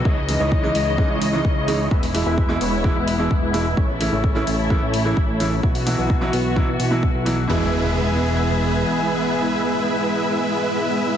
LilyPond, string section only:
\new Staff \with { instrumentName = "String section" } { \time 4/4 \key e \major \tempo 4 = 129 <cis e dis''>1 | <b, gis e'>1 | <cis a e'>1 | <e b fis'>1 |
<e b gis'>1~ | <e b gis'>1 | }